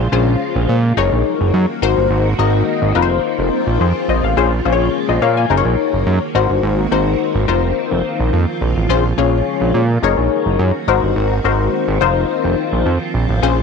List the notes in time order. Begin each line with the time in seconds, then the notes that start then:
Already playing: C#3 F3 G#3 A#3 F4
0.12 A#1 C#4 F4 G#4 C5
0.56 A#1
0.69 A#2
0.97 F#1 D#3 F#3 C#4 D#4 F#4 G#4 A#4 C#5
1.12 A#1
1.41 F#1
1.54 F#2
1.82 G#1 G#3 C4 D#4 F#4 A#4 C5
1.97 G1
2.10 G#1
2.39 G#1 D#4 F#4 A#4 D#5
2.82 G#1
2.95 F1 F3 C4 D#4 F4 A#4 B4
3.02 C5
3.39 F1
3.67 A#1
3.80 F2 G#4 C5
4.08 A#1 C5 D#5
4.23 A1 F5
4.37 A#1 C#3 G#3 C#4 F4 G#4 C5
4.65 A#1 C#4 F4 G#4 C5
4.72 C#5
5.09 A#1 C5 D#5
5.22 A#2 C#5 F5
5.37 F5 G#5
5.50 F#1 D#3 F#3 C#4 D#4 F#4 G#4 A#4 C5
5.57 C#5
5.65 A#1
5.93 F#1
6.07 F#2
6.35 G#1 G#3 C4 D#4 F#4 A#4 C5
6.50 G1
6.63 G#1
6.91 G#1 D#4 F#4 A#4 C5
7.35 G#1
7.48 F1 F3 D#4 F4 A#4 C5
7.91 F1
8.20 A#1
8.33 F2
8.61 A#1
8.76 A1
8.89 A#1 C#3 F3 G#3 C#4 F4 G#4 C5
9.18 A#1 C#4 F4 G#4 C#5
9.61 A#1
9.74 A#2
10.03 F#1 D#3 F#3 C#4 D#4 F#4 G#4 A#4 C#5
10.18 A#1
10.46 F#1
10.59 F#2
10.88 G#1 G#3 C4 D#4 F#4 A#4 C5
11.03 G1
11.16 G#1
11.44 G#1 D#4 F#4 A#4 C5
11.88 G#1
12.01 F1 F3 D#4 F4 A#4 C5
12.44 F1
12.73 A#1
12.86 F2
13.14 A#1
13.29 A1
13.42 A#1 C#3 G#3 A#3 C#4 F4 G#4 C5